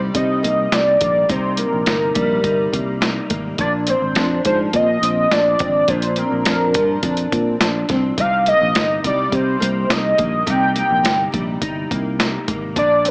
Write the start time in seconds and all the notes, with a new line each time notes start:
Already playing: C3 G3 A#3 D#4
0.14 C3 D#4 D#5, kick, closed hi-hat
0.43 C2 A#3, closed hi-hat
0.72 C2 D#4 D5, snare, closed hi-hat
1.00 A#1 A#3, kick, closed hi-hat
1.29 C2 C3 D#4 C5, kick, closed hi-hat
1.57 A#3 A#4, closed hi-hat
1.73 A#1
1.86 G1 D#4, snare, closed hi-hat
2.15 A#1 G3, kick, closed hi-hat
2.43 G1 D#4, kick, closed hi-hat
2.72 C2 A#3, kick, closed hi-hat
3.01 D#4, snare, closed hi-hat
3.30 G#1 A#3, kick, closed hi-hat
3.58 A#1 A#2 D4 D5, kick, closed hi-hat
3.87 C4 C5, closed hi-hat
4.02 G#1
4.15 F2 D4, snare, closed hi-hat
4.45 G#2 F3 C5, kick, closed hi-hat
4.73 A#2 C4 D#5, kick, closed hi-hat
5.02 A#1 C4, closed hi-hat
5.31 A#1 D4 D5, snare, closed hi-hat
5.59 G#1 C4, kick, closed hi-hat
5.88 A#1 A#2 D4 C5, kick, closed hi-hat
6.02 closed hi-hat
6.16 C4 A#4, closed hi-hat
6.32 A#1
6.45 F2 D4, snare, closed hi-hat
6.74 G2 F3, kick, closed hi-hat
7.03 F2 D4, kick, closed hi-hat
7.17 closed hi-hat
7.32 A#2 C4, kick, closed hi-hat
7.60 A#1 D4, snare, closed hi-hat
7.89 C2 C4, kick, snare, closed hi-hat
8.18 C2 C3 D#4 F5, kick, closed hi-hat
8.46 A#3 D#5, closed hi-hat
8.62 A#1
8.75 G1 D#4, snare, closed hi-hat
9.04 C2 G3 D5, kick, closed hi-hat
9.32 C3 D#4 C5, kick, closed hi-hat
9.60 C2 A#3, closed hi-hat
9.90 C2 D#4 D#5, snare, closed hi-hat
10.18 A#1 A#3, kick, closed hi-hat
10.46 C2 C3 D#4 G5, kick, closed hi-hat
10.75 A#3 G5, closed hi-hat
10.91 A#1
11.03 G1 D#4, snare, closed hi-hat
11.32 A#1 G3, kick, closed hi-hat
11.62 G1 D#4, kick, closed hi-hat
11.91 C2 A#3, kick, closed hi-hat
12.19 D#4, snare, closed hi-hat
12.48 G#1 A#3, kick, closed hi-hat
12.76 A#1 A#2 D4 D5, kick, closed hi-hat
13.05 C4, closed hi-hat